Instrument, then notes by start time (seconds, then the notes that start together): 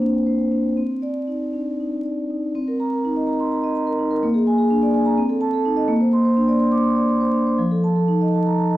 vibraphone
Already playing: A#3 C4 D4 C5
0.02 D4
0.26 C5
0.52 D4
0.77 C4
1.02 D5
1.27 D#4
1.53 D4
1.80 D#4
2.04 D5
2.30 D#4
2.55 C4
2.68 A#4
2.80 A#5
2.92 A#4
3.05 D#4
3.16 D#5
3.27 A#5
3.40 C6
3.52 A#5
3.64 D#5
3.75 A#5
3.87 A#4
3.99 D#4
4.11 A#4
4.23 A#3
4.34 G#4
4.47 G#5
4.58 G#4
4.71 D4
4.82 D5
4.94 G#5
5.05 A#5
5.18 C4
5.29 A4
5.41 A5
5.53 A4
5.65 D#4
5.77 D#5
5.88 A#3
6.01 C5
6.13 C6
6.25 C5
6.37 D4
6.48 D5
6.60 C6
6.72 D6
6.84 C6
6.96 D5
7.09 C6
7.21 C5
7.34 D4
7.47 C5
7.58 F3
7.71 A4
7.84 A5
7.96 A4
8.08 D#4
8.21 D#5
8.34 A5
8.46 A#5
8.59 A5
8.71 D#5